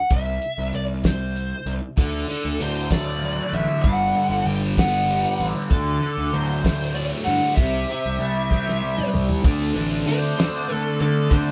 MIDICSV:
0, 0, Header, 1, 6, 480
1, 0, Start_track
1, 0, Tempo, 623053
1, 79, Time_signature, 6, 3, 24, 8
1, 8872, End_track
2, 0, Start_track
2, 0, Title_t, "Lead electric guitar"
2, 0, Program_c, 0, 29
2, 0, Note_on_c, 0, 78, 96
2, 92, Note_on_c, 0, 76, 89
2, 93, Note_off_c, 0, 78, 0
2, 534, Note_off_c, 0, 76, 0
2, 577, Note_on_c, 0, 74, 91
2, 640, Note_off_c, 0, 74, 0
2, 819, Note_on_c, 0, 72, 87
2, 1318, Note_off_c, 0, 72, 0
2, 1527, Note_on_c, 0, 69, 79
2, 2016, Note_off_c, 0, 69, 0
2, 2018, Note_on_c, 0, 72, 85
2, 2231, Note_off_c, 0, 72, 0
2, 2245, Note_on_c, 0, 74, 91
2, 2724, Note_on_c, 0, 76, 80
2, 2735, Note_off_c, 0, 74, 0
2, 2944, Note_off_c, 0, 76, 0
2, 2947, Note_on_c, 0, 78, 91
2, 3434, Note_off_c, 0, 78, 0
2, 3437, Note_on_c, 0, 79, 90
2, 3502, Note_off_c, 0, 79, 0
2, 3686, Note_on_c, 0, 78, 89
2, 4190, Note_off_c, 0, 78, 0
2, 4394, Note_on_c, 0, 69, 78
2, 4882, Note_on_c, 0, 72, 89
2, 4889, Note_off_c, 0, 69, 0
2, 5328, Note_off_c, 0, 72, 0
2, 5354, Note_on_c, 0, 74, 79
2, 5419, Note_off_c, 0, 74, 0
2, 5582, Note_on_c, 0, 78, 88
2, 5812, Note_off_c, 0, 78, 0
2, 5821, Note_on_c, 0, 76, 77
2, 6998, Note_off_c, 0, 76, 0
2, 7764, Note_on_c, 0, 72, 98
2, 8281, Note_off_c, 0, 72, 0
2, 8281, Note_on_c, 0, 69, 98
2, 8459, Note_off_c, 0, 69, 0
2, 8487, Note_on_c, 0, 69, 78
2, 8715, Note_off_c, 0, 69, 0
2, 8735, Note_on_c, 0, 72, 77
2, 8872, Note_off_c, 0, 72, 0
2, 8872, End_track
3, 0, Start_track
3, 0, Title_t, "Transistor combo organ"
3, 0, Program_c, 1, 18
3, 7279, Note_on_c, 1, 69, 69
3, 7281, Note_on_c, 1, 60, 55
3, 7282, Note_on_c, 1, 57, 64
3, 7285, Note_on_c, 1, 62, 57
3, 8872, Note_off_c, 1, 57, 0
3, 8872, Note_off_c, 1, 60, 0
3, 8872, Note_off_c, 1, 62, 0
3, 8872, Note_off_c, 1, 69, 0
3, 8872, End_track
4, 0, Start_track
4, 0, Title_t, "Distorted electric guitar"
4, 0, Program_c, 2, 30
4, 1519, Note_on_c, 2, 50, 68
4, 1754, Note_off_c, 2, 50, 0
4, 1763, Note_on_c, 2, 50, 64
4, 2003, Note_on_c, 2, 54, 60
4, 2240, Note_on_c, 2, 57, 65
4, 2474, Note_off_c, 2, 54, 0
4, 2483, Note_on_c, 2, 54, 64
4, 2711, Note_off_c, 2, 50, 0
4, 2721, Note_on_c, 2, 50, 59
4, 2956, Note_on_c, 2, 43, 73
4, 2958, Note_off_c, 2, 50, 0
4, 2958, Note_off_c, 2, 57, 0
4, 2960, Note_off_c, 2, 54, 0
4, 3201, Note_on_c, 2, 50, 64
4, 3440, Note_on_c, 2, 55, 66
4, 3682, Note_on_c, 2, 59, 70
4, 3906, Note_off_c, 2, 55, 0
4, 3915, Note_on_c, 2, 55, 66
4, 4146, Note_off_c, 2, 50, 0
4, 4155, Note_on_c, 2, 50, 68
4, 4156, Note_off_c, 2, 43, 0
4, 4389, Note_off_c, 2, 50, 0
4, 4395, Note_off_c, 2, 55, 0
4, 4398, Note_on_c, 2, 50, 70
4, 4399, Note_off_c, 2, 59, 0
4, 4632, Note_off_c, 2, 50, 0
4, 4641, Note_on_c, 2, 50, 65
4, 4876, Note_on_c, 2, 54, 64
4, 5115, Note_on_c, 2, 57, 72
4, 5348, Note_off_c, 2, 54, 0
4, 5357, Note_on_c, 2, 54, 63
4, 5590, Note_off_c, 2, 50, 0
4, 5599, Note_on_c, 2, 50, 63
4, 5831, Note_off_c, 2, 50, 0
4, 5834, Note_on_c, 2, 48, 67
4, 5835, Note_off_c, 2, 57, 0
4, 5836, Note_off_c, 2, 54, 0
4, 6068, Note_off_c, 2, 48, 0
4, 6077, Note_on_c, 2, 48, 63
4, 6311, Note_on_c, 2, 55, 61
4, 6551, Note_on_c, 2, 60, 69
4, 6787, Note_off_c, 2, 55, 0
4, 6796, Note_on_c, 2, 55, 65
4, 7021, Note_off_c, 2, 48, 0
4, 7030, Note_on_c, 2, 48, 68
4, 7260, Note_off_c, 2, 48, 0
4, 7263, Note_on_c, 2, 50, 85
4, 7272, Note_off_c, 2, 55, 0
4, 7274, Note_off_c, 2, 60, 0
4, 7275, Note_on_c, 2, 57, 89
4, 7282, Note_on_c, 2, 62, 100
4, 7502, Note_off_c, 2, 62, 0
4, 7506, Note_on_c, 2, 62, 69
4, 7522, Note_off_c, 2, 57, 0
4, 7525, Note_on_c, 2, 57, 61
4, 7745, Note_off_c, 2, 50, 0
4, 7748, Note_on_c, 2, 50, 67
4, 7753, Note_off_c, 2, 57, 0
4, 7756, Note_on_c, 2, 57, 77
4, 7764, Note_off_c, 2, 62, 0
4, 7768, Note_on_c, 2, 62, 89
4, 7988, Note_off_c, 2, 62, 0
4, 7992, Note_on_c, 2, 62, 71
4, 7998, Note_off_c, 2, 57, 0
4, 8008, Note_on_c, 2, 57, 55
4, 8219, Note_off_c, 2, 50, 0
4, 8228, Note_off_c, 2, 57, 0
4, 8228, Note_on_c, 2, 50, 67
4, 8237, Note_on_c, 2, 57, 85
4, 8244, Note_off_c, 2, 62, 0
4, 8247, Note_on_c, 2, 62, 72
4, 8465, Note_off_c, 2, 62, 0
4, 8468, Note_on_c, 2, 62, 66
4, 8476, Note_off_c, 2, 57, 0
4, 8485, Note_on_c, 2, 57, 60
4, 8699, Note_off_c, 2, 50, 0
4, 8708, Note_on_c, 2, 50, 87
4, 8709, Note_off_c, 2, 57, 0
4, 8718, Note_on_c, 2, 57, 101
4, 8723, Note_off_c, 2, 62, 0
4, 8726, Note_on_c, 2, 62, 95
4, 8872, Note_off_c, 2, 50, 0
4, 8872, Note_off_c, 2, 57, 0
4, 8872, Note_off_c, 2, 62, 0
4, 8872, End_track
5, 0, Start_track
5, 0, Title_t, "Picked electric bass"
5, 0, Program_c, 3, 34
5, 85, Note_on_c, 3, 36, 87
5, 285, Note_off_c, 3, 36, 0
5, 446, Note_on_c, 3, 36, 74
5, 545, Note_off_c, 3, 36, 0
5, 568, Note_on_c, 3, 36, 85
5, 1174, Note_off_c, 3, 36, 0
5, 1278, Note_on_c, 3, 36, 80
5, 1380, Note_off_c, 3, 36, 0
5, 1521, Note_on_c, 3, 38, 88
5, 1723, Note_off_c, 3, 38, 0
5, 1887, Note_on_c, 3, 38, 73
5, 1984, Note_off_c, 3, 38, 0
5, 2006, Note_on_c, 3, 38, 78
5, 2612, Note_off_c, 3, 38, 0
5, 2718, Note_on_c, 3, 33, 76
5, 2819, Note_off_c, 3, 33, 0
5, 2959, Note_on_c, 3, 31, 88
5, 3161, Note_off_c, 3, 31, 0
5, 3309, Note_on_c, 3, 31, 72
5, 3414, Note_off_c, 3, 31, 0
5, 3432, Note_on_c, 3, 31, 81
5, 4043, Note_off_c, 3, 31, 0
5, 4156, Note_on_c, 3, 33, 79
5, 4258, Note_off_c, 3, 33, 0
5, 4396, Note_on_c, 3, 38, 88
5, 4599, Note_off_c, 3, 38, 0
5, 4759, Note_on_c, 3, 38, 72
5, 4859, Note_off_c, 3, 38, 0
5, 4879, Note_on_c, 3, 38, 76
5, 5487, Note_off_c, 3, 38, 0
5, 5600, Note_on_c, 3, 43, 74
5, 5700, Note_off_c, 3, 43, 0
5, 5833, Note_on_c, 3, 36, 91
5, 6037, Note_off_c, 3, 36, 0
5, 6207, Note_on_c, 3, 36, 69
5, 6304, Note_off_c, 3, 36, 0
5, 6318, Note_on_c, 3, 36, 82
5, 6927, Note_off_c, 3, 36, 0
5, 7041, Note_on_c, 3, 36, 75
5, 7140, Note_off_c, 3, 36, 0
5, 7277, Note_on_c, 3, 38, 109
5, 7480, Note_off_c, 3, 38, 0
5, 7520, Note_on_c, 3, 33, 87
5, 7722, Note_off_c, 3, 33, 0
5, 7750, Note_on_c, 3, 50, 83
5, 7956, Note_off_c, 3, 50, 0
5, 8480, Note_on_c, 3, 50, 78
5, 8682, Note_off_c, 3, 50, 0
5, 8715, Note_on_c, 3, 50, 99
5, 8872, Note_off_c, 3, 50, 0
5, 8872, End_track
6, 0, Start_track
6, 0, Title_t, "Drums"
6, 80, Note_on_c, 9, 42, 74
6, 83, Note_on_c, 9, 36, 96
6, 157, Note_off_c, 9, 42, 0
6, 160, Note_off_c, 9, 36, 0
6, 321, Note_on_c, 9, 42, 58
6, 398, Note_off_c, 9, 42, 0
6, 562, Note_on_c, 9, 42, 55
6, 639, Note_off_c, 9, 42, 0
6, 799, Note_on_c, 9, 42, 78
6, 802, Note_on_c, 9, 36, 70
6, 809, Note_on_c, 9, 38, 105
6, 876, Note_off_c, 9, 42, 0
6, 879, Note_off_c, 9, 36, 0
6, 886, Note_off_c, 9, 38, 0
6, 1044, Note_on_c, 9, 42, 61
6, 1121, Note_off_c, 9, 42, 0
6, 1282, Note_on_c, 9, 42, 60
6, 1359, Note_off_c, 9, 42, 0
6, 1521, Note_on_c, 9, 42, 78
6, 1522, Note_on_c, 9, 36, 101
6, 1599, Note_off_c, 9, 36, 0
6, 1599, Note_off_c, 9, 42, 0
6, 1765, Note_on_c, 9, 42, 61
6, 1842, Note_off_c, 9, 42, 0
6, 2006, Note_on_c, 9, 42, 52
6, 2083, Note_off_c, 9, 42, 0
6, 2239, Note_on_c, 9, 36, 70
6, 2241, Note_on_c, 9, 42, 80
6, 2250, Note_on_c, 9, 38, 104
6, 2317, Note_off_c, 9, 36, 0
6, 2318, Note_off_c, 9, 42, 0
6, 2327, Note_off_c, 9, 38, 0
6, 2480, Note_on_c, 9, 42, 56
6, 2557, Note_off_c, 9, 42, 0
6, 2722, Note_on_c, 9, 42, 61
6, 2799, Note_off_c, 9, 42, 0
6, 2955, Note_on_c, 9, 42, 74
6, 2958, Note_on_c, 9, 36, 98
6, 3033, Note_off_c, 9, 42, 0
6, 3035, Note_off_c, 9, 36, 0
6, 3198, Note_on_c, 9, 42, 53
6, 3275, Note_off_c, 9, 42, 0
6, 3439, Note_on_c, 9, 42, 49
6, 3516, Note_off_c, 9, 42, 0
6, 3678, Note_on_c, 9, 36, 72
6, 3682, Note_on_c, 9, 42, 75
6, 3692, Note_on_c, 9, 38, 104
6, 3755, Note_off_c, 9, 36, 0
6, 3759, Note_off_c, 9, 42, 0
6, 3769, Note_off_c, 9, 38, 0
6, 3922, Note_on_c, 9, 42, 54
6, 3999, Note_off_c, 9, 42, 0
6, 4162, Note_on_c, 9, 42, 58
6, 4239, Note_off_c, 9, 42, 0
6, 4398, Note_on_c, 9, 36, 103
6, 4401, Note_on_c, 9, 42, 75
6, 4475, Note_off_c, 9, 36, 0
6, 4478, Note_off_c, 9, 42, 0
6, 4643, Note_on_c, 9, 42, 57
6, 4720, Note_off_c, 9, 42, 0
6, 4883, Note_on_c, 9, 42, 55
6, 4960, Note_off_c, 9, 42, 0
6, 5118, Note_on_c, 9, 36, 70
6, 5121, Note_on_c, 9, 42, 79
6, 5130, Note_on_c, 9, 38, 101
6, 5195, Note_off_c, 9, 36, 0
6, 5198, Note_off_c, 9, 42, 0
6, 5207, Note_off_c, 9, 38, 0
6, 5356, Note_on_c, 9, 42, 59
6, 5433, Note_off_c, 9, 42, 0
6, 5597, Note_on_c, 9, 42, 58
6, 5674, Note_off_c, 9, 42, 0
6, 5833, Note_on_c, 9, 42, 83
6, 5835, Note_on_c, 9, 36, 100
6, 5910, Note_off_c, 9, 42, 0
6, 5912, Note_off_c, 9, 36, 0
6, 6077, Note_on_c, 9, 42, 62
6, 6154, Note_off_c, 9, 42, 0
6, 6319, Note_on_c, 9, 42, 61
6, 6396, Note_off_c, 9, 42, 0
6, 6556, Note_on_c, 9, 36, 70
6, 6564, Note_on_c, 9, 38, 52
6, 6633, Note_off_c, 9, 36, 0
6, 6641, Note_off_c, 9, 38, 0
6, 6690, Note_on_c, 9, 38, 51
6, 6767, Note_off_c, 9, 38, 0
6, 6921, Note_on_c, 9, 47, 65
6, 6998, Note_off_c, 9, 47, 0
6, 7039, Note_on_c, 9, 45, 82
6, 7116, Note_off_c, 9, 45, 0
6, 7159, Note_on_c, 9, 43, 71
6, 7236, Note_off_c, 9, 43, 0
6, 7275, Note_on_c, 9, 42, 87
6, 7276, Note_on_c, 9, 36, 110
6, 7352, Note_off_c, 9, 42, 0
6, 7353, Note_off_c, 9, 36, 0
6, 7517, Note_on_c, 9, 42, 65
6, 7595, Note_off_c, 9, 42, 0
6, 7760, Note_on_c, 9, 42, 58
6, 7837, Note_off_c, 9, 42, 0
6, 8002, Note_on_c, 9, 42, 83
6, 8011, Note_on_c, 9, 38, 107
6, 8079, Note_off_c, 9, 42, 0
6, 8088, Note_off_c, 9, 38, 0
6, 8238, Note_on_c, 9, 42, 65
6, 8315, Note_off_c, 9, 42, 0
6, 8477, Note_on_c, 9, 42, 63
6, 8554, Note_off_c, 9, 42, 0
6, 8714, Note_on_c, 9, 36, 100
6, 8714, Note_on_c, 9, 42, 95
6, 8791, Note_off_c, 9, 36, 0
6, 8791, Note_off_c, 9, 42, 0
6, 8872, End_track
0, 0, End_of_file